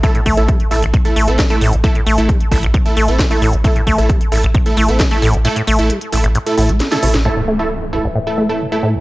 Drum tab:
HH |xxoxxxoxxxoxxxox|xxoxxxoxxxoxxxox|xxoxxxoxxxoxxxox|xxoxxxoxxxoxxxox|
SD |------------o---|------------o---|------------o---|------------oo-o|
BD |o-o-o---o---o---|o---o-o-o---o---|o-o-o---o---o---|----------------|

HH |----------------|
SD |----------------|
BD |----------------|